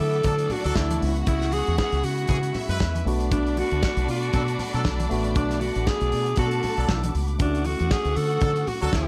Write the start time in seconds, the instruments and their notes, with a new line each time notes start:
Already playing: tine electric piano F#3 A3 D4 E4, string section E4 A4 E5 F#5 C#6 D6
0.00 fingered electric bass D3, alto saxophone A4
0.13 closed hi-hat
0.23 fingered electric bass D3, horn section F#3 D4 A4, string section D4 D5, kick, closed hi-hat, muted conga, low conga
0.38 closed hi-hat
0.50 alto saxophone F#4, open hi-hat, low conga
0.64 fingered electric bass D2, horn section F#3 D4 A4, alto saxophone F#4, closed hi-hat
0.75 fingered electric bass D2, alto saxophone E4, kick, snare, high conga
0.90 closed hi-hat, high conga
1.00 fingered electric bass C#2, tine electric piano G#3 B3 C#4 D4, string section F#4 G#4 E5 F#5 B5, open hi-hat
1.09 tine electric piano E4
1.16 closed hi-hat
1.27 fingered electric bass C#2, alto saxophone E4, kick, closed hi-hat, muted conga
1.42 snare, closed hi-hat
1.52 alto saxophone G#4, open hi-hat, muted conga
1.67 fingered electric bass E2, closed hi-hat
1.78 alto saxophone G#4, kick, snare, high conga
1.92 fingered electric bass C#2, closed hi-hat
2.03 fingered electric bass C#3, alto saxophone F#4, open hi-hat
2.18 closed hi-hat
2.27 fingered electric bass C#3, horn section E3 C#4 G#4, kick, closed hi-hat, muted conga, low conga
2.43 closed hi-hat
2.54 string section E4 E5, open hi-hat, low conga
2.69 fingered electric bass F#2, horn section G#3 E4 B4, closed hi-hat
2.80 fingered electric bass E2, kick, snare, high conga
2.95 closed hi-hat, high conga
3.05 fingered electric bass B1, tine electric piano A3 B3 D4 F#4, string section A3 D4 D5 F#5 D6, open hi-hat
3.20 closed hi-hat
3.31 alto saxophone D4, kick, closed hi-hat, muted conga
3.46 closed hi-hat
3.57 alto saxophone F#4, open hi-hat, muted conga
3.71 fingered electric bass D2, closed hi-hat
3.83 alto saxophone F#4, kick, snare, high conga
3.97 fingered electric bass B1, closed hi-hat
4.08 fingered electric bass B2, alto saxophone F#4, open hi-hat
4.23 closed hi-hat
4.33 fingered electric bass B2, horn section F#3 D4 A4, kick, closed hi-hat, muted conga, low conga
4.48 closed hi-hat
4.59 open hi-hat, low conga
4.73 fingered electric bass B2, horn section F#3 D4 A4, closed hi-hat
4.85 fingered electric bass B1, kick, snare, high conga
5.00 closed hi-hat, high conga
5.09 fingered electric bass A1, tine electric piano A3 B3 D4 F#4, open hi-hat
5.24 closed hi-hat
5.35 fingered electric bass B1, alto saxophone D4, kick, closed hi-hat, muted conga
5.50 snare, closed hi-hat
5.61 alto saxophone F#4, open hi-hat, muted conga
5.75 fingered electric bass A1, closed hi-hat
5.87 alto saxophone G#4, kick, snare, high conga
6.01 fingered electric bass B1, closed hi-hat
6.12 fingered electric bass B2, open hi-hat
6.26 closed hi-hat
6.36 fingered electric bass B2, horn section F#3 D4 A4, alto saxophone F#4, string section A4 A5, kick, closed hi-hat, muted conga, low conga
6.51 closed hi-hat
6.63 open hi-hat, low conga
6.77 fingered electric bass B1, horn section F#3 D4 A4, closed hi-hat
6.89 fingered electric bass B1, kick, snare, high conga
7.03 closed hi-hat, high conga
7.15 fingered electric bass C#2, open hi-hat
7.28 closed hi-hat
7.38 fingered electric bass D2, tine electric piano A3 C#4 E4 F#4, alto saxophone D4, string section F#4 A4 F#5 C#6, kick, closed hi-hat, muted conga
7.55 closed hi-hat
7.64 alto saxophone F#4, open hi-hat, muted conga
7.79 fingered electric bass E2, closed hi-hat
7.91 alto saxophone G#4, kick, snare, high conga
8.05 fingered electric bass D2, closed hi-hat
8.16 fingered electric bass D3, alto saxophone A4, open hi-hat
8.30 closed hi-hat
8.40 fingered electric bass D3, horn section F#3 D4 A4, kick, closed hi-hat, low conga
8.56 closed hi-hat
8.67 alto saxophone F#4, open hi-hat, low conga
8.81 fingered electric bass D2, horn section F#3 D4 A4, alto saxophone F#4, closed hi-hat
8.93 fingered electric bass D2, alto saxophone E4, kick, snare, high conga